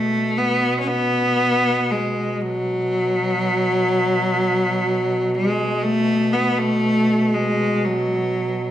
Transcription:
Already playing: B2 A3
0.38 B3
0.80 C#4
0.87 B3
1.91 G#3
2.41 F#3
5.34 G#3
5.82 A3
6.33 B3
6.59 A3
7.34 G#3
7.85 F#3

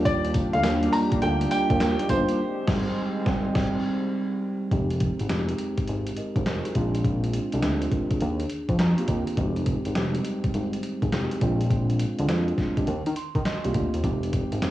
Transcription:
Already playing: D#2 D#3 G3 A#3 D4 F4 G4
0.05 D5, kick, closed hi-hat, tambourine
0.25 closed hi-hat
0.34 kick, closed hi-hat, tambourine
0.53 D2 F5, closed hi-hat
0.64 D#2, snare, clap, closed hi-hat, tambourine
0.83 G3 A#3 D4 F4, closed hi-hat
0.93 A#5, open hi-hat, tambourine
1.12 kick, closed hi-hat
1.22 D2 G5, closed hi-hat
1.41 closed hi-hat
1.51 G3 A#3 D4 F4 G5, closed hi-hat, tambourine
1.70 D#2, kick, closed hi-hat
1.80 D#2, snare, clap, closed hi-hat, tambourine
1.99 closed hi-hat
2.09 G1 G3 A#3 D4 F4 C5, kick, closed hi-hat, tambourine
2.29 closed hi-hat
2.39 G#3 C4
2.67 G#1 G3 C4 D#4, kick, snare, crash
3.26 G#1 G3 C4, kick, snare
3.55 G#1 G3 C4, kick, snare, crash
4.72 F1 G#3 C4 D#4 G4, kick, closed hi-hat
4.91 closed hi-hat
5.00 kick, closed hi-hat
5.20 G#1, closed hi-hat
5.29 F1 G#3 C4 D#4 G4, snare, clap, closed hi-hat
5.49 closed hi-hat
5.59 closed hi-hat
5.78 kick, closed hi-hat
5.88 G#1, closed hi-hat
6.07 closed hi-hat
6.17 A#4 D#5, closed hi-hat
6.36 G#1 G4 C5, kick, closed hi-hat
6.46 F1 F4 A#4, snare, clap, closed hi-hat
6.65 D#4 G#4, closed hi-hat
6.75 A#1 G#3 C4 D4 F4, kick, closed hi-hat
6.95 closed hi-hat
7.04 kick, closed hi-hat
7.24 closed hi-hat
7.33 closed hi-hat
7.52 C2 G#3 C4 D4 G4, closed hi-hat
7.62 D2, snare, clap, closed hi-hat
7.82 C4 F4, closed hi-hat
7.92 F4 A#4, kick, closed hi-hat
8.11 D4 G#4, kick, closed hi-hat
8.21 D#2, closed hi-hat
8.40 closed hi-hat
8.50 closed hi-hat
8.69 F2, kick, closed hi-hat
8.79 F2 A#5, snare, clap, closed hi-hat
8.98 A#3 C4 F4 G4, closed hi-hat
9.08 D#2, kick, closed hi-hat
9.27 closed hi-hat
9.37 F1 G#3 C4 D#4 F#4, kick, closed hi-hat
9.45 G4
9.56 closed hi-hat
9.66 kick, closed hi-hat
9.85 G#1, closed hi-hat
9.95 F1 G3 C4 D#4 G4, snare, clap, closed hi-hat
10.02 G#3
10.15 closed hi-hat
10.25 closed hi-hat
10.44 kick, closed hi-hat
10.54 G#1, closed hi-hat
10.73 closed hi-hat
10.83 closed hi-hat
11.02 G#1, kick, closed hi-hat
11.12 F1 G#3 C4 D#4 G4, snare, clap, closed hi-hat
11.31 closed hi-hat
11.41 A#1 G#3 C4 D4 F4, kick, closed hi-hat
11.61 closed hi-hat
11.71 kick, closed hi-hat
11.90 closed hi-hat
12.00 closed hi-hat
12.19 D2 G#3 C4 D4 F4, closed hi-hat
12.29 F2, snare, clap, closed hi-hat
12.48 closed hi-hat
12.58 kick, snare, closed hi-hat
12.77 G#3 C4 D4 G4, kick, closed hi-hat
12.87 D#2, closed hi-hat
13.06 D#3, closed hi-hat
13.16 C6, closed hi-hat
13.35 D#3, kick, closed hi-hat
13.45 D#5, snare, clap, closed hi-hat
13.64 C2 A#3 C4 F4 G4, closed hi-hat
13.74 D2, kick, closed hi-hat
13.94 D#2, closed hi-hat
14.04 F1 G#3 C4 D#4 G4, kick, closed hi-hat
14.23 closed hi-hat
14.33 kick, closed hi-hat
14.52 G#1, closed hi-hat
14.62 F1 G#3 C4 D#4 G4, snare, clap, closed hi-hat

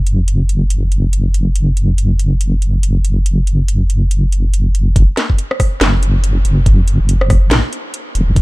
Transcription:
Already playing: F#1
0.07 closed hi-hat
0.28 closed hi-hat
0.49 closed hi-hat
0.70 closed hi-hat
0.92 closed hi-hat
1.13 closed hi-hat
1.34 closed hi-hat
1.56 closed hi-hat
1.77 closed hi-hat
1.98 closed hi-hat
2.19 closed hi-hat
2.41 closed hi-hat
2.62 closed hi-hat
2.83 closed hi-hat
3.05 closed hi-hat
3.26 closed hi-hat
3.47 closed hi-hat
3.68 closed hi-hat
3.90 closed hi-hat
4.11 closed hi-hat
4.32 closed hi-hat
4.54 closed hi-hat
4.75 closed hi-hat
4.96 F#1, kick, closed hi-hat
5.17 snare, closed hi-hat
5.30 kick
5.39 closed hi-hat
5.51 cross-stick
5.60 kick, cross-stick, open hi-hat
5.81 F#1, snare, closed hi-hat
6.03 closed hi-hat
6.24 closed hi-hat
6.45 F#1, closed hi-hat
6.66 kick, closed hi-hat
6.88 closed hi-hat
7.00 F#1
7.09 closed hi-hat
7.21 cross-stick
7.30 kick, cross-stick, open hi-hat
7.51 A1, snare, closed hi-hat
7.73 closed hi-hat
7.94 closed hi-hat
8.15 E1, closed hi-hat
8.28 F#1
8.36 F#1, kick, closed hi-hat

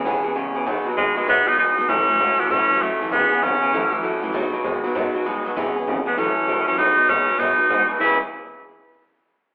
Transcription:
0.04 B1 E2 B2 E3 G#3 B3 C#4 G#4
0.23 E2 B2 B3 C#4 G#4, muted upright bass stroke
0.35 C#2 E2 C#3 G#3 B3 C#4 G#4
0.54 D2 E2 B2 B3 C#4 G#4
0.66 B1 B2 F#3 G#3 B3 D#4 F#4
0.85 B2 F#3 B3 D#4 F#4, muted upright bass stroke
0.96 D#2 B2 G#3 B3 D#4 F#4
1.15 B2 F#3 G#3 B3 D#4 F#4, muted upright bass stroke
1.27 F#2 B2 F#3 G#3 B3 D#4 F#4
1.46 B2 F#3 B3 D#4 F#4, muted upright bass stroke
1.57 G#2 B2 G#3 B3 D#4 F#4
1.77 G#1 B2 F#3 B3 D#4 F#4
1.88 A1 A2 E3 F#3 A3 C#4 F#4
2.08 A2 E3 F#3 A3 C#4 F#4, muted upright bass stroke
2.19 C#2 A2 F#3 A3 C#4 F#4
2.39 A2 E3 F#3 A3 B3 C#4 F#4, muted upright bass stroke
2.50 E2 A2 E3 F#3 A3 C#4 F#4
2.69 A2 E3 F#3 A3 C#4 F#4, muted upright bass stroke
2.80 F#2 A2 F#3 A3 C#4 F#4
3.00 F#2 A2 E3 F#3 A3 C#4 F#4
3.11 E1 E2 B2 E3 G#3 B3 C#4 G#4
3.31 E2 B2 B3 C#4 G#4, muted upright bass stroke
3.42 G#1 E2 C#3 G#3 B3 C#4 G#4
3.61 E2 B2 B3 C#4 G#4, muted upright bass stroke
3.72 A1 A2 E3 F#3 A3 C#4 F#4
3.91 A2 E3 F#3 A3 C#4 F#4, muted upright bass stroke
4.02 F#2 A2 F#3 A3 C#4 F#4
4.22 F#2 A2 E3 F#3 A3 C#4 F#4
4.33 B1 B2 F#3 G#3 B3 D#4 F#4
4.52 B2 F#3 B3 D#4 F#4, muted upright bass stroke
4.64 D#2 B2 G#3 B3 D#4 F#4
4.84 B2 F#3 B3 D#4 F#4, muted upright bass stroke
4.94 F#2 B2 F#3 G#3 B3 D#4 F#4
5.14 B2 F#3 B3 D#4 F#4, muted upright bass stroke
5.25 G#2 B2 G#3 B3 D#4 F#4
5.44 D#2 B2 F#3 B3 D#4 F#4
5.56 E1 E2 B2 E3 G#3 B3 C#4 G#4
5.76 B3 C#4 G#4, muted upright bass stroke
5.87 G#1 E2 C#3 G#3 B3 C#4 G#4
6.06 E2 B2 B3 C#4 G#4, muted upright bass stroke
6.17 A1 A2 E3 F#3 A3 C#4 F#4
6.35 F#3 A3 C#4 F#4, muted upright bass stroke
6.46 A#1 A2 F#3 A3 C#4 F#4
6.66 A2 E3 F#3 A3 C#4 F#4, muted upright bass stroke
6.77 B1 B2 F#3 G#3 B3 D#4 F#4
6.96 B3 D#4 F#4, muted upright bass stroke
7.08 D#2 B2 G#3 B3 C#4 D#4 F#4
7.27 B2 F#3 B3 D#4 F#4, muted upright bass stroke
7.38 F#2 B2 F#3 G#3 B3 D#4 F#4
7.58 B3 D#4 F#4, muted upright bass stroke
7.69 G#2 B2 G#3 B3 D#4 F#4
7.89 B2 F#3 B3 D#4 F#4, muted upright bass stroke
8.00 E1 E3 G#3 B3 C#4 E4 G#4 B4

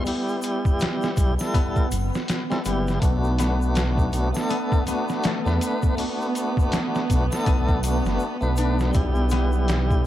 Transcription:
Already playing: A3 B3
0.04 G3 E4, open hi-hat, shaker
0.08 G4
0.28 shaker
0.42 closed hi-hat, shaker
0.65 kick, shaker
0.80 snare, closed hi-hat, shaker
1.02 snare, shaker
1.17 B1, kick, closed hi-hat, shaker
1.38 G3 E4 A4, snare, triangle, shaker
1.54 B3, kick, closed hi-hat, shaker
1.76 kick, shaker
1.91 F#1, closed hi-hat, triangle, shaker
2.14 snare, shaker
2.28 snare, closed hi-hat, shaker
2.50 G3 C4 E4 A4, snare, shaker
2.65 F#1 G3 B3 E4 G4, closed hi-hat, shaker
2.87 snare, shaker
3.00 B1 A3 B3 D4, kick, closed hi-hat, shaker
3.05 F#4
3.24 shaker
3.38 B3, snare, closed hi-hat, shaker
3.62 shaker
3.75 snare, closed hi-hat, shaker
3.98 kick, shaker
4.13 B1, closed hi-hat, shaker
4.33 A3 B3 D4 A4, snare, triangle, shaker
4.49 B3, closed hi-hat, shaker
4.72 kick, shaker
4.86 A3 B3 D4 F#4, closed hi-hat, shaker
5.08 snare, shaker
5.23 A3, snare, closed hi-hat, shaker
5.44 E2 A3 B3 D4 B4, snare, shaker
5.61 closed hi-hat, shaker
5.83 kick, shaker
5.95 A3 B3 D4, open hi-hat, shaker
6.00 F#4
6.21 shaker
6.35 closed hi-hat, shaker
6.57 kick, shaker
6.72 snare, closed hi-hat, shaker
6.95 snare, shaker
7.10 B1, kick, closed hi-hat, shaker
7.30 A3 B3 D4 A4, snare, triangle, shaker
7.46 B1 B3, kick, closed hi-hat, shaker
7.68 kick, shaker
7.82 A3 B3 D4 F#4, closed hi-hat, triangle, shaker
8.04 F#1, snare, shaker
8.19 shaker
8.41 B1 A3 B3 D4 B4, shaker
8.57 D4, closed hi-hat, shaker
8.79 snare, shaker
8.91 B1 G3 E4, kick, closed hi-hat, shaker
8.96 G4
9.15 shaker
9.30 B3, snare, closed hi-hat, shaker
9.52 shaker
9.68 snare, closed hi-hat, shaker
9.91 kick, shaker

